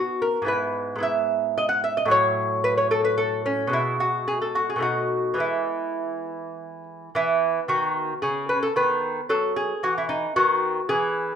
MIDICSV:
0, 0, Header, 1, 2, 480
1, 0, Start_track
1, 0, Key_signature, 4, "major"
1, 0, Tempo, 534283
1, 448, Time_signature, 3, 2, 24, 8
1, 2373, Tempo, 547445
1, 4293, Tempo, 582524
1, 6213, Tempo, 545951
1, 6693, Tempo, 530973
1, 9992, End_track
2, 0, Start_track
2, 0, Title_t, "Lute"
2, 0, Program_c, 0, 24
2, 0, Note_on_c, 0, 47, 52
2, 0, Note_on_c, 0, 59, 44
2, 0, Note_on_c, 0, 63, 42
2, 0, Note_on_c, 0, 66, 68
2, 195, Note_on_c, 0, 70, 77
2, 197, Note_off_c, 0, 66, 0
2, 367, Note_off_c, 0, 47, 0
2, 376, Note_off_c, 0, 59, 0
2, 377, Note_on_c, 0, 44, 61
2, 389, Note_off_c, 0, 63, 0
2, 402, Note_on_c, 0, 59, 50
2, 415, Note_on_c, 0, 64, 48
2, 428, Note_off_c, 0, 70, 0
2, 432, Note_on_c, 0, 71, 75
2, 848, Note_off_c, 0, 44, 0
2, 858, Note_on_c, 0, 44, 57
2, 873, Note_off_c, 0, 59, 0
2, 884, Note_on_c, 0, 59, 49
2, 889, Note_off_c, 0, 64, 0
2, 899, Note_on_c, 0, 64, 49
2, 900, Note_off_c, 0, 71, 0
2, 922, Note_on_c, 0, 76, 93
2, 1394, Note_off_c, 0, 76, 0
2, 1416, Note_on_c, 0, 75, 89
2, 1513, Note_off_c, 0, 75, 0
2, 1516, Note_on_c, 0, 78, 82
2, 1646, Note_off_c, 0, 78, 0
2, 1651, Note_on_c, 0, 76, 86
2, 1767, Note_off_c, 0, 76, 0
2, 1771, Note_on_c, 0, 75, 81
2, 1830, Note_off_c, 0, 44, 0
2, 1843, Note_off_c, 0, 59, 0
2, 1846, Note_on_c, 0, 45, 67
2, 1852, Note_off_c, 0, 64, 0
2, 1867, Note_on_c, 0, 54, 53
2, 1886, Note_on_c, 0, 64, 51
2, 1892, Note_off_c, 0, 75, 0
2, 1898, Note_on_c, 0, 73, 100
2, 2356, Note_off_c, 0, 73, 0
2, 2372, Note_on_c, 0, 71, 91
2, 2486, Note_off_c, 0, 71, 0
2, 2490, Note_on_c, 0, 73, 77
2, 2605, Note_off_c, 0, 73, 0
2, 2608, Note_on_c, 0, 69, 87
2, 2723, Note_off_c, 0, 69, 0
2, 2727, Note_on_c, 0, 71, 80
2, 2838, Note_off_c, 0, 71, 0
2, 2842, Note_on_c, 0, 69, 76
2, 3076, Note_off_c, 0, 69, 0
2, 3088, Note_on_c, 0, 61, 78
2, 3271, Note_off_c, 0, 45, 0
2, 3275, Note_off_c, 0, 54, 0
2, 3279, Note_on_c, 0, 47, 68
2, 3291, Note_off_c, 0, 64, 0
2, 3297, Note_on_c, 0, 56, 54
2, 3320, Note_off_c, 0, 61, 0
2, 3330, Note_on_c, 0, 64, 85
2, 3561, Note_off_c, 0, 64, 0
2, 3566, Note_on_c, 0, 66, 73
2, 3799, Note_off_c, 0, 66, 0
2, 3806, Note_on_c, 0, 68, 84
2, 3925, Note_off_c, 0, 68, 0
2, 3929, Note_on_c, 0, 69, 73
2, 4049, Note_on_c, 0, 66, 77
2, 4050, Note_off_c, 0, 69, 0
2, 4171, Note_off_c, 0, 66, 0
2, 4175, Note_on_c, 0, 68, 72
2, 4220, Note_off_c, 0, 47, 0
2, 4230, Note_on_c, 0, 47, 57
2, 4245, Note_off_c, 0, 56, 0
2, 4249, Note_on_c, 0, 57, 47
2, 4268, Note_on_c, 0, 63, 45
2, 4286, Note_on_c, 0, 66, 69
2, 4295, Note_off_c, 0, 68, 0
2, 4711, Note_on_c, 0, 52, 54
2, 4717, Note_off_c, 0, 57, 0
2, 4720, Note_on_c, 0, 56, 44
2, 4722, Note_off_c, 0, 47, 0
2, 4739, Note_off_c, 0, 63, 0
2, 4742, Note_on_c, 0, 59, 42
2, 4744, Note_off_c, 0, 66, 0
2, 4762, Note_on_c, 0, 64, 71
2, 5940, Note_off_c, 0, 64, 0
2, 6152, Note_off_c, 0, 52, 0
2, 6156, Note_off_c, 0, 56, 0
2, 6167, Note_off_c, 0, 59, 0
2, 6204, Note_on_c, 0, 52, 69
2, 6206, Note_on_c, 0, 59, 47
2, 6212, Note_on_c, 0, 64, 86
2, 6592, Note_off_c, 0, 52, 0
2, 6670, Note_off_c, 0, 64, 0
2, 6671, Note_on_c, 0, 51, 64
2, 6678, Note_on_c, 0, 66, 81
2, 7068, Note_off_c, 0, 51, 0
2, 7151, Note_off_c, 0, 66, 0
2, 7157, Note_on_c, 0, 68, 78
2, 7167, Note_on_c, 0, 49, 57
2, 7397, Note_off_c, 0, 68, 0
2, 7401, Note_on_c, 0, 71, 81
2, 7520, Note_off_c, 0, 71, 0
2, 7524, Note_on_c, 0, 69, 81
2, 7558, Note_off_c, 0, 49, 0
2, 7621, Note_off_c, 0, 59, 0
2, 7645, Note_on_c, 0, 51, 66
2, 7647, Note_off_c, 0, 69, 0
2, 7649, Note_on_c, 0, 59, 51
2, 7650, Note_on_c, 0, 71, 85
2, 8037, Note_off_c, 0, 51, 0
2, 8115, Note_off_c, 0, 71, 0
2, 8127, Note_on_c, 0, 54, 69
2, 8132, Note_on_c, 0, 69, 92
2, 8365, Note_off_c, 0, 69, 0
2, 8371, Note_on_c, 0, 68, 77
2, 8518, Note_off_c, 0, 54, 0
2, 8607, Note_off_c, 0, 68, 0
2, 8613, Note_on_c, 0, 52, 63
2, 8618, Note_on_c, 0, 66, 80
2, 8739, Note_off_c, 0, 66, 0
2, 8745, Note_on_c, 0, 64, 72
2, 8842, Note_off_c, 0, 64, 0
2, 8846, Note_on_c, 0, 63, 75
2, 9001, Note_off_c, 0, 52, 0
2, 9059, Note_off_c, 0, 59, 0
2, 9084, Note_off_c, 0, 63, 0
2, 9092, Note_on_c, 0, 59, 48
2, 9092, Note_on_c, 0, 66, 91
2, 9095, Note_on_c, 0, 51, 69
2, 9479, Note_off_c, 0, 51, 0
2, 9554, Note_off_c, 0, 66, 0
2, 9570, Note_on_c, 0, 68, 88
2, 9576, Note_on_c, 0, 52, 68
2, 9954, Note_off_c, 0, 52, 0
2, 9992, Note_off_c, 0, 59, 0
2, 9992, Note_off_c, 0, 68, 0
2, 9992, End_track
0, 0, End_of_file